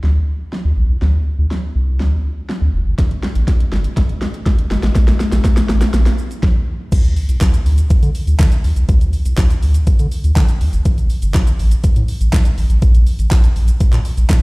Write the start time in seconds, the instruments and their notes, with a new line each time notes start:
0.03 analog synth bass D2, snare
0.53 snare
0.65 analog synth bass D2
0.77 analog synth bass A#1
0.90 analog synth bass C2
1.02 analog synth bass D2, snare
1.39 analog synth bass D2
1.51 snare
1.76 analog synth bass C2
2.00 analog synth bass D2, snare
2.49 snare
2.62 analog synth bass D2
2.74 analog synth bass F1
2.86 analog synth bass G1
2.99 analog synth bass A1, kick, snare, closed hi-hat
3.11 closed hi-hat
3.23 snare
3.35 analog synth bass A1, closed hi-hat
3.48 kick, snare, closed hi-hat
3.60 closed hi-hat
3.72 analog synth bass G1, snare
3.84 closed hi-hat
3.97 analog synth bass A1, kick, snare, closed hi-hat
4.09 closed hi-hat
4.22 snare
4.34 closed hi-hat
4.46 kick, snare, closed hi-hat
4.58 analog synth bass A1, closed hi-hat
4.71 analog synth bass G1, snare
4.83 analog synth bass A1, snare, closed hi-hat
4.95 analog synth bass A#1, kick, snare, closed hi-hat, shaker
5.08 snare, closed hi-hat, shaker
5.20 snare, shaker
5.32 analog synth bass A#1, snare, closed hi-hat, shaker
5.45 kick, snare, closed hi-hat, shaker
5.57 snare, closed hi-hat, shaker
5.69 analog synth bass A1, snare, shaker
5.81 snare, closed hi-hat, shaker
5.94 analog synth bass A#1, snare, closed hi-hat, shaker
6.06 snare, closed hi-hat, shaker
6.18 shaker
6.31 closed hi-hat, shaker
6.43 kick, snare
6.92 analog synth bass D2, kick, closed hi-hat, crash, shaker
7.05 closed hi-hat, shaker
7.17 open hi-hat, shaker
7.29 analog synth bass C2, closed hi-hat, shaker
7.41 analog synth bass D2, kick, snare, clap, closed hi-hat, shaker
7.54 closed hi-hat, shaker
7.66 analog synth bass D2, open hi-hat, shaker
7.78 closed hi-hat, shaker
7.90 analog synth bass D3, kick, closed hi-hat, shaker
8.03 analog synth bass D3, closed hi-hat, shaker
8.15 open hi-hat, shaker
8.27 analog synth bass D2, closed hi-hat, shaker
8.39 analog synth bass D3, kick, snare, clap, closed hi-hat, shaker
8.52 closed hi-hat, shaker
8.64 analog synth bass D2, open hi-hat, shaker
8.76 analog synth bass C2, closed hi-hat, shaker
8.89 analog synth bass D2, kick, closed hi-hat, shaker
9.01 closed hi-hat, shaker
9.13 open hi-hat, shaker
9.26 analog synth bass C2, closed hi-hat, shaker
9.38 analog synth bass D2, kick, snare, clap, closed hi-hat, shaker
9.50 closed hi-hat, shaker
9.63 analog synth bass D2, open hi-hat, shaker
9.74 closed hi-hat, shaker
9.87 analog synth bass D3, kick, closed hi-hat, shaker
9.99 analog synth bass D3, closed hi-hat, shaker
10.12 open hi-hat, shaker
10.24 analog synth bass D2, closed hi-hat, shaker
10.36 analog synth bass D3, kick, snare, clap, closed hi-hat, shaker
10.48 closed hi-hat, shaker
10.61 analog synth bass D2, open hi-hat, shaker
10.73 analog synth bass G1, closed hi-hat, shaker
10.85 analog synth bass A1, kick, closed hi-hat, shaker
10.98 closed hi-hat, shaker
11.10 open hi-hat, shaker
11.22 analog synth bass G1, closed hi-hat, shaker
11.34 analog synth bass A1, kick, snare, clap, closed hi-hat, shaker
11.47 closed hi-hat, shaker
11.59 analog synth bass A1, open hi-hat, shaker
11.71 closed hi-hat, shaker
11.84 analog synth bass A2, kick, closed hi-hat, shaker
11.96 analog synth bass A2, closed hi-hat, shaker
12.08 open hi-hat, shaker
12.21 analog synth bass A1, closed hi-hat, shaker
12.33 analog synth bass A2, kick, snare, clap, closed hi-hat, shaker
12.45 closed hi-hat, shaker
12.58 analog synth bass A1, open hi-hat, shaker
12.70 analog synth bass A1, closed hi-hat, shaker
12.82 analog synth bass A#1, kick, closed hi-hat, shaker
12.95 closed hi-hat, shaker
13.07 open hi-hat, shaker
13.19 analog synth bass A1, closed hi-hat, shaker
13.31 analog synth bass A#1, kick, snare, clap, closed hi-hat, shaker
13.44 closed hi-hat, shaker
13.56 analog synth bass A#1, open hi-hat, shaker
13.68 closed hi-hat, shaker
13.80 analog synth bass A#2, kick, closed hi-hat, shaker
13.93 analog synth bass A#2, clap, closed hi-hat, shaker
14.05 open hi-hat, shaker
14.17 analog synth bass A#1, closed hi-hat, shaker
14.30 analog synth bass A#2, kick, snare, clap, closed hi-hat, shaker